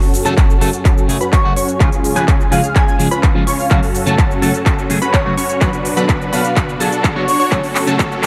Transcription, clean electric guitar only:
0.25 0.33 C#3 medium
0.25 0.33 F#3 medium
0.25 0.33 A3 medium
0.25 0.33 A4 loud
0.61 0.68 C#3 medium
0.61 0.69 F#3 medium
0.61 0.69 A3 medium
0.61 0.69 A4 medium
1.08 1.16 C#3 medium
1.08 1.16 F#3 medium
1.08 1.17 A3 medium
1.08 1.17 G#4 medium
1.44 1.52 C#3 medium
1.44 1.52 F#3 medium
1.44 1.52 A3 medium
1.44 1.53 F#4 medium
1.80 1.88 C#3 medium
1.80 1.88 F3 medium
1.80 1.88 G#3 medium
1.80 1.88 F4 medium
2.16 2.23 C#3 medium
2.16 2.24 F3 medium
2.16 2.24 G#3 medium
2.16 2.24 B4 loud
2.51 2.59 C#3 medium
2.51 2.59 F3 medium
2.51 2.59 G#3 medium
2.51 2.60 B4 medium
2.99 3.07 C#3 medium
2.99 3.07 F3 medium
2.99 3.07 G#3 medium
2.99 3.07 G#4 medium
3.34 3.42 C#3 medium
3.34 3.43 F3 medium
3.34 3.43 G#3 medium
3.34 3.43 F4 medium
3.70 3.78 C#3 medium
3.70 3.78 F#3 medium
3.70 3.79 A3 medium
3.70 3.79 F#4 medium
4.06 4.14 C#3 medium
4.06 4.14 F#3 medium
4.06 4.14 A3 medium
4.06 4.14 A4 loud
4.42 4.50 C#3 medium
4.42 4.50 F#3 medium
4.42 4.50 A3 medium
4.42 4.50 A4 loud
4.89 4.97 C#3 medium
4.89 4.97 F#3 medium
4.89 4.98 A3 medium
4.89 4.98 G#4 medium
5.25 5.33 C#3 medium
5.25 5.33 F#3 medium
5.25 5.33 A3 medium
5.25 5.33 F#4 medium
5.61 5.69 D3 medium
5.61 5.69 F#3 medium
5.61 5.69 B3 medium
5.61 5.69 F#4 medium
5.96 6.04 D3 medium
5.96 6.04 F#3 medium
5.96 6.05 B3 medium
5.96 6.05 A4 loud
6.32 6.40 D3 medium
6.32 6.40 F#3 medium
6.32 6.40 B3 medium
6.32 6.41 A4 medium
6.80 6.88 D3 medium
6.80 6.88 F#3 medium
6.80 6.88 B3 medium
6.80 6.88 G#4 medium
7.15 7.23 D3 medium
7.15 7.23 F#3 medium
7.15 7.24 B3 medium
7.15 7.24 F#4 medium
7.51 7.59 C#3 medium
7.51 7.59 F#3 medium
7.51 7.59 A3 medium
7.51 7.60 F#4 medium
7.87 7.95 C#3 medium
7.87 7.95 F#3 medium
7.87 7.95 A3 medium
7.87 7.95 A4 loud
8.22 8.27 C#3 medium
8.22 8.27 F#3 medium
8.22 8.27 A3 medium

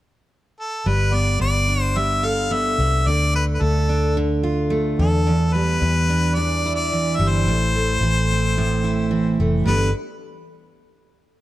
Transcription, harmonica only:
0.60 0.89 A4 medium
0.88 1.16 B4 medium
1.15 1.41 D5 medium
1.41 1.81 D5 medium
1.81 1.99 C5 medium
1.98 2.27 E5 medium
2.25 2.54 F5 medium
2.52 3.09 E5 medium
3.08 3.34 D5 medium
3.36 3.44 B4 medium
3.54 3.63 B4 soft
3.62 4.16 A4 medium
4.99 5.54 A4 medium
5.53 6.36 B4 medium
6.35 6.75 D5 medium
6.75 7.17 D5 medium
7.16 7.30 E5 medium
7.29 9.37 C5 medium
9.66 9.92 B4 medium

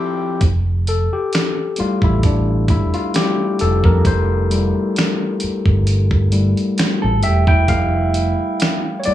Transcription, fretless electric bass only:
0.42 1.07 F1 medium
1.80 muted fretless electric bass stroke soft
2.03 2.89 A1 medium
3.62 3.83 F1 medium
3.85 4.04 F2 medium
4.06 4.71 F1 medium
5.44 muted fretless electric bass stroke soft
5.67 6.53 G1 medium
7.04 7.25 A1 medium
7.25 7.69 E1 medium
7.69 8.35 F1 medium
9.07 muted fretless electric bass stroke soft

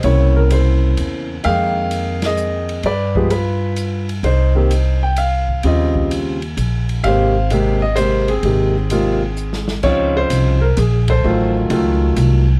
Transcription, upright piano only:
0.04 1.35 C#3 soft
0.04 1.35 A#3 soft
0.04 1.35 C4 soft
0.04 0.52 E4 soft
0.04 0.37 C#5 medium
0.36 0.51 A#4 medium
0.52 1.26 E4 soft
0.52 1.26 C5 medium
1.44 2.75 D#3 soft
1.44 2.75 G#3 soft
1.44 2.75 A#3 soft
1.44 2.20 G#4 medium
1.44 2.19 F5 loud
1.44 2.75 G5 medium
2.26 2.82 G#4 medium
2.26 2.82 D#5 medium
2.86 3.30 B4 medium
2.86 3.15 D5 medium
3.16 3.29 F3 medium
3.16 3.29 G#3 soft
3.16 3.29 B3 soft
3.16 3.29 G4 medium
3.16 3.31 G#4 medium
3.31 4.06 F4 soft
3.31 4.05 B4 medium
4.24 5.00 D#4 medium
4.24 4.99 C5 medium
4.55 4.69 D#3 medium
4.55 4.69 A#3 soft
4.55 4.69 C4 soft
4.55 4.69 G4 medium
5.03 5.18 G5 medium
5.18 5.61 F5 medium
5.64 6.36 C#3 medium
5.64 6.37 G3 soft
5.64 6.37 C4 medium
5.64 6.37 F4 medium
5.64 6.40 G4 medium
5.64 6.09 D#5 medium
7.04 7.33 C3 medium
7.04 7.33 G#3 soft
7.04 7.33 A#3 soft
7.04 7.34 G4 medium
7.04 7.80 C5 medium
7.04 7.47 F5 medium
7.51 7.79 C3 medium
7.51 7.80 G#3 medium
7.51 7.80 A#3 medium
7.51 7.80 G4 medium
7.82 7.96 D#5 medium
7.96 8.26 C3 soft
7.96 8.26 G#3 soft
7.96 8.27 A#3 soft
7.96 8.27 G4 medium
7.96 8.29 C5 medium
8.29 9.66 C4 soft
8.29 9.65 G#4 medium
8.44 8.73 C3 soft
8.44 8.73 G#3 soft
8.44 8.73 A#3 soft
8.44 8.73 G4 soft
8.91 9.19 C3 medium
8.91 9.20 G#3 soft
8.91 9.20 A#3 medium
8.91 9.20 F4 medium
9.83 10.57 C#3 soft
9.83 10.57 F3 soft
9.83 10.57 C4 soft
9.83 10.57 D#4 medium
9.83 10.59 F4 medium
9.83 10.17 C#5 medium
10.17 10.65 C5 medium
10.61 10.76 A#4 medium
10.79 11.08 G#4 medium
11.10 11.67 A4 medium
11.10 11.53 C5 medium
11.24 11.69 D#3 medium
11.24 11.69 F#3 medium
11.24 11.70 A3 soft
11.24 11.70 F4 medium
11.70 12.43 D#3 medium
11.70 12.43 F#3 soft
11.70 12.43 A3 medium
11.70 12.43 F4 medium

